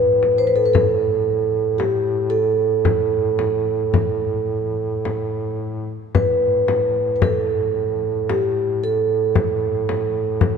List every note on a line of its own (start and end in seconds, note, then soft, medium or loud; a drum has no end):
0.00 5.97 A2 soft
0.00 0.41 B4 medium
0.23 frame drum soft
0.38 0.48 C5 medium
0.47 0.57 B4 medium
0.56 0.66 A4 medium
0.66 0.75 B4 medium
0.73 1.76 A4 medium
0.73 frame drum medium
1.78 2.34 G4 medium
1.78 frame drum soft
2.30 5.55 A4 medium
2.85 frame drum medium
3.39 frame drum medium
3.94 frame drum medium
5.05 frame drum medium
6.14 10.57 A2 soft
6.14 7.15 B4 medium
6.14 frame drum medium
6.68 frame drum medium
7.16 7.23 B4 medium
7.22 8.33 A4 medium
7.22 frame drum medium
8.29 8.79 G4 medium
8.29 frame drum medium
8.84 10.57 A4 medium
9.35 frame drum medium
9.89 frame drum medium
10.41 frame drum medium